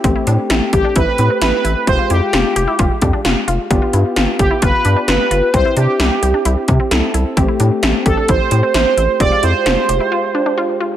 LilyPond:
<<
  \new Staff \with { instrumentName = "Analog polysynth" } { \time 4/4 \key a \minor \tempo 4 = 131 r4. g'8 b'4 b'4 | c''8 g'2. r8 | r4. g'8 b'4 b'4 | c''8 g'2. r8 |
r4. a'8 c''4 c''4 | d''8 c''2. r8 | }
  \new Staff \with { instrumentName = "Synth arpeggio sound" } { \time 4/4 \key a \minor c'16 e'16 d'8 e'8 g'16 d'16 e'8 c'16 c'16 e'8 e'8 | c'16 f'16 e'8 f'8 g'16 e'16 f'8 d'16 d'16 f'8 f'8 | d'16 f'16 e'8 f'8 g'16 e'16 f'8 d'16 d'16 f'8 f'8 | c'16 e'16 d'8 e'8 g'16 d'16 e'8 c'16 c'16 e'8 e'8 |
c'16 e'16 d'8 e'8 g'16 d'16 e'8 c'16 c'16 e'8 e'8 | c'16 f'16 e'8 f'8 g'16 e'16 f'8 d'16 d'16 f'8 f'8 | }
  \new Staff \with { instrumentName = "Synth keys" } { \time 4/4 \key a \minor <a c' g'>2~ <a c' g'>8 <a c' g'>4. | <aes f' g'>1 | <b f' g'>1 | <c' e' g'>2. <c' e' a'>4 |
<a c' g'>2~ <a c' g'>8 <a c' g'>4. | <aes f' g'>1 | }
  \new Staff \with { instrumentName = "Analog synth bass" } { \clef bass \time 4/4 \key a \minor a,,16 r16 a,16 r16 a,,16 r16 a,,16 r16 a,,16 r16 a,16 r16 a,,16 r16 a,,16 r16 | f,,16 r16 f,16 r16 f,,16 r16 f,,16 r16 f,,16 r16 f,16 r16 f,,16 r16 f,,16 r16 | g,,16 r16 g,16 r16 g,,16 r16 g,,16 r16 g,,16 r16 g,16 r16 g,,16 r16 g,,16 r16 | c,16 r16 c16 r16 c,16 r16 c,16 r16 c,16 r16 c16 r16 c,16 r16 c,16 r16 |
a,,16 r16 a,16 r16 a,,16 r16 a,,16 r16 a,,16 r16 a,16 r16 a,,16 r16 a,,16 r16 | f,,16 r16 f,16 r16 f,,16 r16 f,,16 r2 r16 | }
  \new DrumStaff \with { instrumentName = "Drums" } \drummode { \time 4/4 <hh bd>8 hh8 <hh sn>8 <hh bd>8 <hh bd>8 hh8 <hh sn>8 hh8 | <hh bd>8 hh8 <hh sn>8 hh8 <hh bd>8 <hh bd>8 <hh sn>8 hh8 | <hh bd>8 hh8 <hh sn>8 <hh bd>8 <hh bd>8 hh8 <hh sn>8 hh8 | <hh bd>8 hh8 <hh sn>8 hh8 hh8 <hh bd>8 <hh sn>8 hh8 |
<hh bd>8 hh8 <hh sn>8 <hh bd>8 <hh bd>8 hh8 <hh sn>8 hh8 | <hh bd>8 hh8 <hh sn>8 hh8 r4 r4 | }
>>